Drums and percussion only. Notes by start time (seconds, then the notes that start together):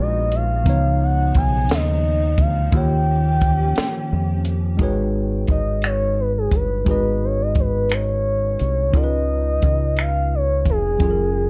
0.32 closed hi-hat
0.66 kick, closed hi-hat
1.35 kick, closed hi-hat
1.69 snare, closed hi-hat
2.38 kick, closed hi-hat
2.72 kick, closed hi-hat
3.41 kick, closed hi-hat
3.76 snare, closed hi-hat
4.45 closed hi-hat
4.79 kick, closed hi-hat
5.47 kick, closed hi-hat
5.82 finger snap, closed hi-hat
6.51 kick, closed hi-hat
6.86 kick, closed hi-hat
7.55 kick, closed hi-hat
7.89 finger snap, closed hi-hat
8.59 closed hi-hat
8.94 kick, closed hi-hat
9.62 kick, closed hi-hat
9.97 finger snap, closed hi-hat
10.65 kick, closed hi-hat
11.00 kick, closed hi-hat